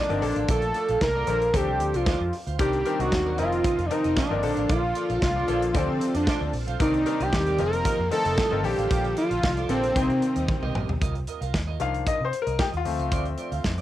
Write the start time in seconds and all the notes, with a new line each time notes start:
Already playing: D4 F4
0.09 G1 F3 C4 D#4 A#4, muted clean electric guitar stroke, closed hi-hat
0.21 A#1 F3 A#3 D4 A4, muted clean electric guitar stroke, open hi-hat
0.36 A1 F4 A4 F5, closed hi-hat
0.48 A#1 F4 A4 D5, kick, closed hi-hat
0.62 muted clean electric guitar stroke, closed hi-hat
0.74 F4 A4 D5, closed hi-hat
0.89 A#1 F4 A4 F5, closed hi-hat
1.01 C2 A#4, muted clean electric guitar stroke, kick, snare
1.15 F4 A4 D5
1.27 A#1 F3 A#3 D4 F4 A4 D5, closed hi-hat
1.42 closed hi-hat
1.53 D2 F3 C4 D4 F4 G4 A4 C5 D5, kick, closed hi-hat
1.68 C2, muted clean electric guitar stroke
1.80 D2, muted clean electric guitar stroke, closed hi-hat
1.94 C2 F4 C5 D5, closed hi-hat
2.06 D2 F4 C5 D5, kick, snare
2.20 F2, muted clean electric guitar stroke
2.33 muted clean electric guitar stroke, open hi-hat
2.47 D2 F4 C5 F5, closed hi-hat
2.59 C2 C3 D#3 G3 A#3 C4 D4 D#4 G4 A#4 D5, kick, closed hi-hat
2.73 muted clean electric guitar stroke, closed hi-hat
2.85 D#3 C4 D4 D#4 A#4 D5, closed hi-hat
2.99 C2 D#4 F#4 A#4 D#5, closed hi-hat
3.12 D#2, kick, snare
3.26 D#4 A#4 D5
3.38 F1 C3 F3 A#3 C4 D#4 F4 A#4 D#5, closed hi-hat
3.52 muted clean electric guitar stroke, closed hi-hat
3.64 F4 A#4 D#5, muted fingered electric bass stroke, kick, closed hi-hat
3.78 F2, muted clean electric guitar stroke, closed hi-hat
3.86 D4
3.90 F3 C4 D#4 A#4, muted clean electric guitar stroke, closed hi-hat
4.04 F1 F4 A#4 D#5, closed hi-hat
4.16 D4 F4 A#4 D#5, kick, snare
4.30 G1 F3 C4 D#4 A#4, muted clean electric guitar stroke
4.43 A#1 D3 F3 A#3 C4 F4 A4, muted clean electric guitar stroke, open hi-hat
4.49 D4
4.57 A1 F4 A4 F5, closed hi-hat
4.69 A#1 F4 A4 D5, kick, closed hi-hat
4.83 muted clean electric guitar stroke
4.95 F4 A4 D5, closed hi-hat
5.09 A#1 F4 A4 F5, closed hi-hat
5.22 C2 F4, muted clean electric guitar stroke, kick, snare
5.36 F4 A4 D5
5.48 A#1 F3 A#3 D4 F4 A4 D5, closed hi-hat
5.62 muted clean electric guitar stroke, closed hi-hat
5.74 D2 F3 C4 D4 F4 A4 C5 D5, kick, closed hi-hat
5.88 D3, muted clean electric guitar stroke
6.01 muted clean electric guitar stroke, closed hi-hat
6.14 F2 D4 F4 C5 D5, closed hi-hat
6.27 F4 C5 D5, kick, snare
6.41 D2, muted clean electric guitar stroke
6.53 A#1, muted clean electric guitar stroke, open hi-hat
6.67 B1 F4 C5 F5, closed hi-hat
6.80 C2 C3 D#3 G3 A#3 C4 D4 D#4 A#4 D5, kick, closed hi-hat
6.94 muted clean electric guitar stroke, closed hi-hat
7.06 D#3 C4 D4 D#4 A#4 D5, closed hi-hat
7.20 C2 D#4 G4 A#4 D#5, closed hi-hat
7.33 D#2, muted clean electric guitar stroke, kick, snare
7.46 D#4 A#4 D5, closed hi-hat
7.58 F1 F3 C4 D#4 F4 A#4 D#5, closed hi-hat
7.72 muted clean electric guitar stroke, closed hi-hat
7.85 F4 A#4 D#5, kick, closed hi-hat
7.99 F2, muted clean electric guitar stroke
8.11 F3 C4 D#4 A4 A#4, muted clean electric guitar stroke, closed hi-hat
8.25 F1 F4 A#4 D#5, closed hi-hat
8.38 F4 A#4 D#5, kick, snare
8.51 G1 F3 C4 D#4 A#4, muted clean electric guitar stroke
8.64 A#1 D3 F3 A#3 D4 F4 G4 A4, muted clean electric guitar stroke, open hi-hat
8.78 A1 F4 A4 F5, closed hi-hat
8.91 A#1 F4 A4 D5, kick, closed hi-hat
9.04 muted clean electric guitar stroke, closed hi-hat
9.17 F4 A4 D5, closed hi-hat
9.30 A#1 F4 A4 F5, closed hi-hat
9.43 C2, muted clean electric guitar stroke, kick, snare
9.57 F4 A4 D5, closed hi-hat
9.69 A#1 F3 A#3 C4 D4 F4 A4 D5, closed hi-hat
9.83 muted clean electric guitar stroke, closed hi-hat
9.95 C2 C3 D#3 G3 A#3 C4 D#4 G4 A#4 D#5, kick, closed hi-hat
10.09 C3, muted clean electric guitar stroke, closed hi-hat
10.22 muted clean electric guitar stroke, closed hi-hat
10.36 D#2 G4 A#4 D#5, closed hi-hat
10.48 muted clean electric guitar stroke, kick, high tom
10.62 C2 G4 A#4 D#5, mid tom
10.75 A#1 G4 A#4 D#5, mid tom
10.89 B1, muted clean electric guitar stroke, floor tom
11.01 C2 F4 A#4 D#5, kick, closed hi-hat
11.15 muted clean electric guitar stroke, closed hi-hat
11.27 F4 A#4 D#5, closed hi-hat
11.41 C2 F4 A#4 F5, closed hi-hat
11.54 D#2, muted clean electric guitar stroke, kick, snare
11.67 F4 A#4 D#5
11.80 C2 D#3 F3 A#3 D4 F4 A#4 D#5 F5, closed hi-hat
11.94 muted clean electric guitar stroke, closed hi-hat
12.06 F4 A#4 D#5, kick, closed hi-hat
12.20 C3, muted clean electric guitar stroke
12.25 C5
12.33 muted clean electric guitar stroke, closed hi-hat
12.42 A#4
12.47 C2 F4 A#4 D#5, closed hi-hat
12.59 F4 G4 A#4 D#5, kick, snare
12.73 D#2 F4, muted clean electric guitar stroke, closed hi-hat
12.85 D2 F3 A3 C4, muted clean electric guitar stroke, open hi-hat
12.99 C#2 F4 C5 F5, closed hi-hat
13.12 D2 F4 C5 D5, kick, closed hi-hat
13.25 muted clean electric guitar stroke, closed hi-hat
13.38 F4 C5 D5, closed hi-hat
13.51 D2 F4 C5 F5, closed hi-hat
13.64 F2, muted clean electric guitar stroke, kick, snare
13.78 D5, closed hi-hat